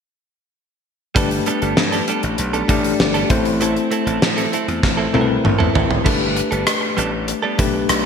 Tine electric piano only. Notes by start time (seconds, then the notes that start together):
1.15 A3 D4 G4 B4
2.68 A3 D4 G4 D5
3.30 A3 C4 E4 C5
5.13 A3 C4 E4 A#4
5.21 B4
6.05 A3 D4 G4 B4
7.58 A3 D4 G4 B4